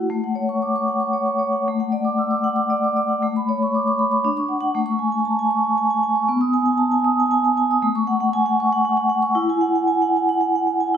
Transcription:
vibraphone
Already playing: A3 E4 F#4 F#5
0.10 A3
0.24 F#5
0.35 C#5
0.49 C#6
0.62 D6
0.76 C#6
0.88 F#5
1.00 C#6
1.13 C#5
1.26 C#6
1.39 C#5
1.53 F#5
1.68 A3
1.80 F#5
1.92 D5
2.05 D6
2.19 E6
2.31 D6
2.44 F#5
2.56 D6
2.70 D5
2.84 D6
2.96 D5
3.09 F#5
3.23 A3
3.36 B5
3.49 C#5
3.63 C#6
3.75 D6
3.88 C#6
3.99 B5
4.11 C#6
4.24 D4
4.37 C#6
4.49 F#5
4.61 F#5
4.75 A3
4.86 C#6
4.99 G#5
5.12 G#5
5.25 A5
5.39 G#5
5.51 C#6
5.64 G#5
5.78 G#5
5.90 G#5
6.03 G#5
6.16 C#6
6.29 B3
6.41 D#6
6.54 G#5
6.66 G#5
6.78 A5
6.91 G#5
7.05 D#6
7.20 G#5
7.31 G#5
7.45 G#5
7.57 G#5
7.71 D#6
7.83 A3
7.95 C#6
8.07 F#5
8.20 F#5
8.33 G#5
8.46 F#5
8.60 C#6
8.73 F#5
8.85 F#5
8.97 F#5
9.09 F#5
9.22 C#6
9.35 E4
9.50 G#5
9.61 F#5
9.75 F#5
9.87 G#5
10.02 F#5
10.16 G#5
10.29 F#5
10.41 F#5
10.55 F#5
10.67 F#5
10.80 G#5

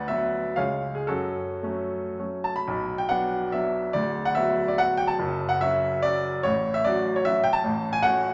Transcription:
grand piano
Already playing: D2 B4 D5 F#5
0.08 F#3 B3 F#4 E5
0.56 C#2 G#3 C#4 G#4 C#5 F5
0.95 G#4
1.07 F#2 C#4 F#4 A4
1.63 F#3 A3 C#4
2.19 F#3 A3 C#4
2.44 A5
2.56 B5
2.67 B1 B2
2.98 G5
3.09 F#3 B3 D4 F#5
3.52 F#3 B3 D4 E5
3.93 D1 D2 D5
4.25 F#5
4.35 F#3 B3 F#4 E5
4.68 D5
4.78 F#3 B3 F#4 F#5
4.97 G5
5.08 A5
5.19 F#1 F#2
5.49 F#5
5.61 F#3 C#4 F#4 E5
6.02 F#3 C#4 F#4 D5
6.43 A1 A2 C#5
6.74 E5
6.84 F#3 C#4 F#4 D5
7.16 C#5
7.25 F#3 C#4 F#4 E5
7.44 G5
7.53 A5
7.64 A1 A2
7.93 G#5
8.03 A3 C#4 F#4 F#5

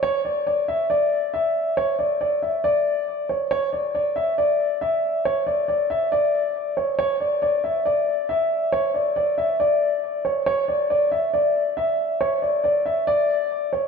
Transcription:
grand piano
0.03 C#5
0.25 D5
0.47 D5
0.68 E5
0.90 D5
1.34 E5
1.77 C#5
1.99 D5
2.21 D5
2.42 E5
2.64 D5
3.29 C#5
3.51 C#5
3.73 D5
3.95 D5
4.16 E5
4.38 D5
4.81 E5
5.25 C#5
5.47 D5
5.68 D5
5.90 E5
6.12 D5
6.77 C#5
6.99 C#5
7.20 D5
7.42 D5
7.64 E5
7.86 D5
8.29 E5
8.72 C#5
8.94 D5
9.16 D5
9.38 E5
9.60 D5
10.25 C#5
10.46 C#5
10.68 D5
10.90 D5
11.12 E5
11.34 D5
11.77 E5
12.21 C#5
12.42 D5
12.64 D5
12.86 E5
13.07 D5
13.73 C#5

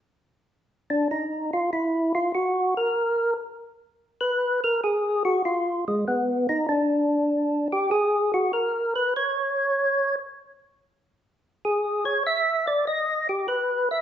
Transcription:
tonewheel organ
0.90 D4
1.11 D#4
1.53 F4
1.73 E4
2.15 F4
2.35 F#4
2.77 A#4
4.21 B4
4.64 A#4
4.84 G#4
5.25 F#4
5.45 F4
5.88 G#3
6.08 B3
6.49 D#4
6.69 D4
7.72 G4
7.91 G#4
8.34 F#4
8.53 A#4
8.96 B4
9.16 C#5
11.65 G#4
12.05 C#5
12.27 E5
12.67 D5
12.87 D#5
13.29 G4
13.48 B4
13.91 E5

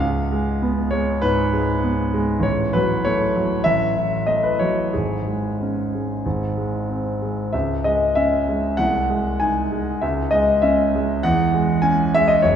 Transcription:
grand piano
Already playing: C#2
0.00 F5
0.32 G#3
0.62 B3
0.91 G#3 C#5
1.22 G#2 B4
1.53 G#3
1.83 B3
2.14 G#3
2.40 A1 C#5
2.73 F#3 B4
3.05 A3 C#5
3.36 F#3
3.64 A1 E5
3.96 A2
4.27 A3 D#5
4.43 B4
4.59 F#3 C#5
4.93 G#1 G#4
5.28 G#3
5.62 C#4
5.95 G#3
6.26 G#1
6.57 G#3
6.89 C4
7.22 G#3
7.53 C#2 E5
7.84 G#3 D#5
8.15 C#4 E5
8.49 G#3
8.77 C2 F#5
9.10 G#3
9.40 D#4 G#5
9.72 G#3
10.02 C#2 E5
10.31 G#3 D#5
10.62 C#4 E5
10.95 G#3
11.23 E2 F#5
11.54 G#3
11.82 C#4 G#5
12.14 G#3 E5
12.28 D#5
12.42 F#1 C#5

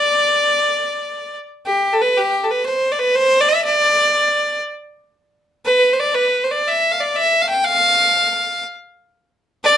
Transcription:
fiddle
Already playing: D5
1.66 G4
1.93 A4
2.01 B4
2.17 G4
2.43 A4
2.51 B4
2.66 C5
2.92 D5
2.99 B4
3.15 C5
3.40 D5
3.48 E5
3.64 D5
5.65 B4
5.93 C5
6.00 D5
6.14 B4
6.44 C5
6.51 D5
6.68 E5
6.92 F5
7.00 D5
7.16 E5
7.41 F5
7.49 G5
7.64 F5
9.64 D5

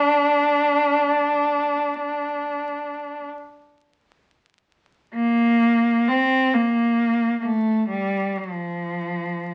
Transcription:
cello
Already playing: D4
5.14 A#3
6.09 C4
6.54 A#3
7.40 A#3
7.45 A3
7.89 G3
8.38 F3

